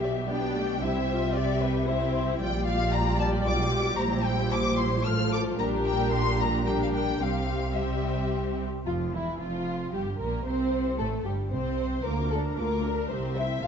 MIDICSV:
0, 0, Header, 1, 6, 480
1, 0, Start_track
1, 0, Tempo, 527241
1, 748, Time_signature, 3, 2, 24, 8
1, 4110, Tempo, 542005
1, 8430, Tempo, 530035
1, 12306, End_track
2, 0, Start_track
2, 0, Title_t, "Violin section"
2, 0, Program_c, 0, 48
2, 32, Note_on_c, 0, 74, 58
2, 105, Note_off_c, 0, 74, 0
2, 276, Note_on_c, 0, 79, 73
2, 743, Note_off_c, 0, 79, 0
2, 749, Note_on_c, 0, 76, 78
2, 1230, Note_off_c, 0, 76, 0
2, 1231, Note_on_c, 0, 74, 90
2, 1470, Note_off_c, 0, 74, 0
2, 1472, Note_on_c, 0, 71, 79
2, 1709, Note_on_c, 0, 72, 73
2, 1710, Note_off_c, 0, 71, 0
2, 2185, Note_on_c, 0, 79, 92
2, 2187, Note_off_c, 0, 72, 0
2, 2420, Note_off_c, 0, 79, 0
2, 2425, Note_on_c, 0, 77, 96
2, 2660, Note_off_c, 0, 77, 0
2, 2667, Note_on_c, 0, 82, 100
2, 2906, Note_off_c, 0, 82, 0
2, 2912, Note_on_c, 0, 81, 88
2, 2985, Note_off_c, 0, 81, 0
2, 3154, Note_on_c, 0, 86, 104
2, 3620, Note_off_c, 0, 86, 0
2, 3624, Note_on_c, 0, 82, 94
2, 3867, Note_off_c, 0, 82, 0
2, 3867, Note_on_c, 0, 79, 103
2, 4111, Note_off_c, 0, 79, 0
2, 4117, Note_on_c, 0, 86, 110
2, 4351, Note_on_c, 0, 84, 92
2, 4352, Note_off_c, 0, 86, 0
2, 4587, Note_off_c, 0, 84, 0
2, 4589, Note_on_c, 0, 89, 92
2, 4825, Note_off_c, 0, 89, 0
2, 4828, Note_on_c, 0, 86, 94
2, 4899, Note_off_c, 0, 86, 0
2, 5063, Note_on_c, 0, 82, 88
2, 5134, Note_off_c, 0, 82, 0
2, 5299, Note_on_c, 0, 79, 86
2, 5531, Note_off_c, 0, 79, 0
2, 5535, Note_on_c, 0, 84, 100
2, 5769, Note_off_c, 0, 84, 0
2, 5783, Note_on_c, 0, 82, 85
2, 6018, Note_off_c, 0, 82, 0
2, 6020, Note_on_c, 0, 79, 82
2, 6137, Note_off_c, 0, 79, 0
2, 6152, Note_on_c, 0, 77, 75
2, 6196, Note_off_c, 0, 77, 0
2, 6264, Note_on_c, 0, 79, 81
2, 6497, Note_off_c, 0, 79, 0
2, 6498, Note_on_c, 0, 77, 81
2, 6985, Note_off_c, 0, 77, 0
2, 6994, Note_on_c, 0, 76, 67
2, 7721, Note_off_c, 0, 76, 0
2, 7964, Note_on_c, 0, 65, 50
2, 8182, Note_off_c, 0, 65, 0
2, 8201, Note_on_c, 0, 64, 45
2, 8436, Note_off_c, 0, 64, 0
2, 8437, Note_on_c, 0, 65, 55
2, 8908, Note_off_c, 0, 65, 0
2, 8922, Note_on_c, 0, 67, 47
2, 9160, Note_off_c, 0, 67, 0
2, 9163, Note_on_c, 0, 70, 55
2, 9396, Note_off_c, 0, 70, 0
2, 9400, Note_on_c, 0, 72, 56
2, 9876, Note_on_c, 0, 69, 58
2, 9880, Note_off_c, 0, 72, 0
2, 10114, Note_off_c, 0, 69, 0
2, 10116, Note_on_c, 0, 67, 47
2, 10358, Note_on_c, 0, 72, 58
2, 10360, Note_off_c, 0, 67, 0
2, 10832, Note_off_c, 0, 72, 0
2, 10840, Note_on_c, 0, 86, 44
2, 11066, Note_off_c, 0, 86, 0
2, 11079, Note_on_c, 0, 82, 45
2, 11321, Note_off_c, 0, 82, 0
2, 11322, Note_on_c, 0, 86, 46
2, 11559, Note_on_c, 0, 82, 43
2, 11560, Note_off_c, 0, 86, 0
2, 11796, Note_off_c, 0, 82, 0
2, 11796, Note_on_c, 0, 76, 40
2, 12017, Note_off_c, 0, 76, 0
2, 12033, Note_on_c, 0, 79, 39
2, 12272, Note_off_c, 0, 79, 0
2, 12277, Note_on_c, 0, 81, 52
2, 12306, Note_off_c, 0, 81, 0
2, 12306, End_track
3, 0, Start_track
3, 0, Title_t, "Violin section"
3, 0, Program_c, 1, 48
3, 0, Note_on_c, 1, 67, 61
3, 0, Note_on_c, 1, 76, 57
3, 268, Note_on_c, 1, 74, 55
3, 269, Note_off_c, 1, 76, 0
3, 748, Note_off_c, 1, 74, 0
3, 753, Note_on_c, 1, 72, 60
3, 1222, Note_off_c, 1, 72, 0
3, 1234, Note_on_c, 1, 76, 64
3, 1672, Note_off_c, 1, 67, 0
3, 1703, Note_off_c, 1, 76, 0
3, 1714, Note_on_c, 1, 67, 54
3, 1714, Note_on_c, 1, 76, 62
3, 2173, Note_off_c, 1, 67, 0
3, 2180, Note_off_c, 1, 76, 0
3, 2182, Note_on_c, 1, 74, 80
3, 2184, Note_on_c, 1, 67, 71
3, 3587, Note_off_c, 1, 74, 0
3, 3625, Note_on_c, 1, 72, 83
3, 4550, Note_off_c, 1, 67, 0
3, 4589, Note_on_c, 1, 69, 68
3, 5024, Note_off_c, 1, 72, 0
3, 5028, Note_off_c, 1, 69, 0
3, 5059, Note_on_c, 1, 67, 77
3, 5059, Note_on_c, 1, 70, 78
3, 5977, Note_off_c, 1, 67, 0
3, 5978, Note_off_c, 1, 70, 0
3, 6012, Note_on_c, 1, 67, 62
3, 6014, Note_on_c, 1, 70, 58
3, 6486, Note_off_c, 1, 67, 0
3, 6487, Note_off_c, 1, 70, 0
3, 6501, Note_on_c, 1, 67, 57
3, 6503, Note_off_c, 1, 67, 0
3, 6503, Note_on_c, 1, 67, 54
3, 6971, Note_off_c, 1, 67, 0
3, 6981, Note_on_c, 1, 67, 63
3, 6984, Note_off_c, 1, 67, 0
3, 6984, Note_on_c, 1, 67, 62
3, 7762, Note_off_c, 1, 67, 0
3, 7963, Note_on_c, 1, 65, 60
3, 8033, Note_off_c, 1, 65, 0
3, 8198, Note_on_c, 1, 64, 55
3, 8430, Note_off_c, 1, 64, 0
3, 8430, Note_on_c, 1, 65, 64
3, 8905, Note_off_c, 1, 65, 0
3, 8912, Note_on_c, 1, 67, 53
3, 9150, Note_off_c, 1, 67, 0
3, 9153, Note_on_c, 1, 70, 56
3, 9391, Note_off_c, 1, 70, 0
3, 9392, Note_on_c, 1, 72, 65
3, 9866, Note_off_c, 1, 72, 0
3, 9870, Note_on_c, 1, 69, 69
3, 9943, Note_off_c, 1, 69, 0
3, 10111, Note_on_c, 1, 67, 53
3, 10183, Note_off_c, 1, 67, 0
3, 10356, Note_on_c, 1, 72, 65
3, 10831, Note_off_c, 1, 72, 0
3, 10831, Note_on_c, 1, 70, 75
3, 11075, Note_on_c, 1, 69, 71
3, 11078, Note_off_c, 1, 70, 0
3, 11147, Note_off_c, 1, 69, 0
3, 11318, Note_on_c, 1, 70, 78
3, 11785, Note_off_c, 1, 70, 0
3, 11788, Note_on_c, 1, 72, 64
3, 12027, Note_on_c, 1, 76, 68
3, 12029, Note_off_c, 1, 72, 0
3, 12258, Note_on_c, 1, 77, 79
3, 12269, Note_off_c, 1, 76, 0
3, 12306, Note_off_c, 1, 77, 0
3, 12306, End_track
4, 0, Start_track
4, 0, Title_t, "Viola section"
4, 0, Program_c, 2, 48
4, 0, Note_on_c, 2, 55, 55
4, 0, Note_on_c, 2, 67, 61
4, 260, Note_off_c, 2, 67, 0
4, 266, Note_on_c, 2, 62, 59
4, 268, Note_off_c, 2, 55, 0
4, 269, Note_on_c, 2, 59, 64
4, 509, Note_off_c, 2, 59, 0
4, 513, Note_on_c, 2, 57, 57
4, 747, Note_off_c, 2, 62, 0
4, 749, Note_on_c, 2, 55, 58
4, 751, Note_off_c, 2, 57, 0
4, 752, Note_on_c, 2, 64, 65
4, 987, Note_on_c, 2, 65, 59
4, 991, Note_off_c, 2, 64, 0
4, 1228, Note_on_c, 2, 67, 59
4, 1229, Note_off_c, 2, 65, 0
4, 1689, Note_off_c, 2, 55, 0
4, 1707, Note_off_c, 2, 67, 0
4, 1709, Note_on_c, 2, 64, 60
4, 1710, Note_on_c, 2, 60, 65
4, 2187, Note_off_c, 2, 60, 0
4, 2187, Note_off_c, 2, 64, 0
4, 2188, Note_on_c, 2, 65, 66
4, 2189, Note_on_c, 2, 55, 71
4, 3590, Note_off_c, 2, 65, 0
4, 3626, Note_on_c, 2, 64, 66
4, 4551, Note_off_c, 2, 64, 0
4, 4552, Note_off_c, 2, 55, 0
4, 4584, Note_on_c, 2, 65, 73
4, 4587, Note_on_c, 2, 53, 65
4, 5025, Note_off_c, 2, 65, 0
4, 5027, Note_off_c, 2, 53, 0
4, 5058, Note_on_c, 2, 62, 63
4, 5060, Note_on_c, 2, 55, 71
4, 5977, Note_off_c, 2, 62, 0
4, 5978, Note_off_c, 2, 55, 0
4, 6014, Note_on_c, 2, 55, 65
4, 6014, Note_on_c, 2, 62, 63
4, 6488, Note_off_c, 2, 55, 0
4, 6488, Note_off_c, 2, 62, 0
4, 6501, Note_on_c, 2, 55, 53
4, 6502, Note_on_c, 2, 60, 54
4, 6977, Note_off_c, 2, 55, 0
4, 6978, Note_off_c, 2, 60, 0
4, 6988, Note_on_c, 2, 55, 68
4, 6989, Note_on_c, 2, 60, 66
4, 7764, Note_off_c, 2, 55, 0
4, 7764, Note_off_c, 2, 60, 0
4, 7956, Note_on_c, 2, 53, 48
4, 8178, Note_off_c, 2, 53, 0
4, 8195, Note_on_c, 2, 52, 49
4, 8433, Note_off_c, 2, 52, 0
4, 8437, Note_on_c, 2, 53, 56
4, 8918, Note_off_c, 2, 53, 0
4, 8921, Note_on_c, 2, 55, 57
4, 8993, Note_off_c, 2, 55, 0
4, 9164, Note_on_c, 2, 58, 53
4, 9397, Note_off_c, 2, 58, 0
4, 9407, Note_on_c, 2, 60, 61
4, 9874, Note_off_c, 2, 60, 0
4, 9877, Note_on_c, 2, 57, 63
4, 10114, Note_off_c, 2, 57, 0
4, 10120, Note_on_c, 2, 55, 52
4, 10357, Note_off_c, 2, 55, 0
4, 10358, Note_on_c, 2, 60, 60
4, 10832, Note_off_c, 2, 60, 0
4, 10847, Note_on_c, 2, 65, 45
4, 10848, Note_on_c, 2, 58, 44
4, 11069, Note_off_c, 2, 65, 0
4, 11070, Note_off_c, 2, 58, 0
4, 11082, Note_on_c, 2, 62, 40
4, 11082, Note_on_c, 2, 70, 43
4, 11321, Note_on_c, 2, 58, 46
4, 11322, Note_on_c, 2, 65, 43
4, 11323, Note_off_c, 2, 62, 0
4, 11323, Note_off_c, 2, 70, 0
4, 11558, Note_on_c, 2, 70, 44
4, 11559, Note_on_c, 2, 62, 47
4, 11560, Note_off_c, 2, 58, 0
4, 11560, Note_off_c, 2, 65, 0
4, 11796, Note_off_c, 2, 70, 0
4, 11797, Note_off_c, 2, 62, 0
4, 11798, Note_on_c, 2, 60, 43
4, 11798, Note_on_c, 2, 67, 46
4, 12018, Note_off_c, 2, 60, 0
4, 12018, Note_off_c, 2, 67, 0
4, 12032, Note_on_c, 2, 72, 45
4, 12035, Note_on_c, 2, 64, 41
4, 12271, Note_off_c, 2, 72, 0
4, 12272, Note_off_c, 2, 64, 0
4, 12273, Note_on_c, 2, 57, 52
4, 12276, Note_on_c, 2, 65, 50
4, 12306, Note_off_c, 2, 57, 0
4, 12306, Note_off_c, 2, 65, 0
4, 12306, End_track
5, 0, Start_track
5, 0, Title_t, "Cello section"
5, 0, Program_c, 3, 48
5, 0, Note_on_c, 3, 47, 66
5, 719, Note_off_c, 3, 47, 0
5, 750, Note_on_c, 3, 48, 75
5, 2187, Note_off_c, 3, 48, 0
5, 2188, Note_on_c, 3, 46, 72
5, 3109, Note_off_c, 3, 46, 0
5, 3145, Note_on_c, 3, 47, 75
5, 3626, Note_off_c, 3, 47, 0
5, 3626, Note_on_c, 3, 46, 81
5, 4568, Note_off_c, 3, 46, 0
5, 4585, Note_on_c, 3, 45, 71
5, 5058, Note_on_c, 3, 46, 79
5, 5059, Note_off_c, 3, 45, 0
5, 6460, Note_off_c, 3, 46, 0
5, 6496, Note_on_c, 3, 48, 67
5, 7752, Note_off_c, 3, 48, 0
5, 7958, Note_on_c, 3, 41, 56
5, 8179, Note_off_c, 3, 41, 0
5, 8199, Note_on_c, 3, 40, 51
5, 8431, Note_on_c, 3, 41, 51
5, 8435, Note_off_c, 3, 40, 0
5, 8905, Note_off_c, 3, 41, 0
5, 8917, Note_on_c, 3, 43, 48
5, 9153, Note_off_c, 3, 43, 0
5, 9153, Note_on_c, 3, 46, 54
5, 9391, Note_off_c, 3, 46, 0
5, 9397, Note_on_c, 3, 48, 66
5, 9868, Note_off_c, 3, 48, 0
5, 9875, Note_on_c, 3, 45, 61
5, 10115, Note_on_c, 3, 43, 47
5, 10119, Note_off_c, 3, 45, 0
5, 10354, Note_off_c, 3, 43, 0
5, 10359, Note_on_c, 3, 48, 56
5, 10840, Note_on_c, 3, 38, 58
5, 10842, Note_off_c, 3, 48, 0
5, 11266, Note_off_c, 3, 38, 0
5, 11320, Note_on_c, 3, 38, 55
5, 11740, Note_off_c, 3, 38, 0
5, 11799, Note_on_c, 3, 36, 57
5, 12217, Note_off_c, 3, 36, 0
5, 12270, Note_on_c, 3, 45, 59
5, 12306, Note_off_c, 3, 45, 0
5, 12306, End_track
6, 0, Start_track
6, 0, Title_t, "Double bass section"
6, 0, Program_c, 4, 48
6, 0, Note_on_c, 4, 35, 64
6, 723, Note_off_c, 4, 35, 0
6, 750, Note_on_c, 4, 36, 65
6, 2185, Note_on_c, 4, 34, 77
6, 2187, Note_off_c, 4, 36, 0
6, 3108, Note_off_c, 4, 34, 0
6, 3141, Note_on_c, 4, 35, 73
6, 3622, Note_on_c, 4, 34, 78
6, 3624, Note_off_c, 4, 35, 0
6, 4566, Note_off_c, 4, 34, 0
6, 4585, Note_on_c, 4, 33, 69
6, 5059, Note_off_c, 4, 33, 0
6, 5059, Note_on_c, 4, 34, 74
6, 6461, Note_off_c, 4, 34, 0
6, 6498, Note_on_c, 4, 36, 68
6, 7753, Note_off_c, 4, 36, 0
6, 7958, Note_on_c, 4, 29, 52
6, 8179, Note_off_c, 4, 29, 0
6, 8193, Note_on_c, 4, 28, 47
6, 8428, Note_on_c, 4, 29, 48
6, 8432, Note_off_c, 4, 28, 0
6, 8904, Note_off_c, 4, 29, 0
6, 8912, Note_on_c, 4, 31, 53
6, 9147, Note_on_c, 4, 34, 54
6, 9150, Note_off_c, 4, 31, 0
6, 9388, Note_off_c, 4, 34, 0
6, 9389, Note_on_c, 4, 36, 58
6, 9864, Note_off_c, 4, 36, 0
6, 9871, Note_on_c, 4, 33, 57
6, 10114, Note_on_c, 4, 31, 47
6, 10117, Note_off_c, 4, 33, 0
6, 10354, Note_off_c, 4, 31, 0
6, 10354, Note_on_c, 4, 36, 53
6, 10840, Note_off_c, 4, 36, 0
6, 10842, Note_on_c, 4, 38, 62
6, 11267, Note_off_c, 4, 38, 0
6, 11323, Note_on_c, 4, 38, 50
6, 11741, Note_off_c, 4, 38, 0
6, 11798, Note_on_c, 4, 36, 58
6, 12216, Note_off_c, 4, 36, 0
6, 12271, Note_on_c, 4, 33, 60
6, 12306, Note_off_c, 4, 33, 0
6, 12306, End_track
0, 0, End_of_file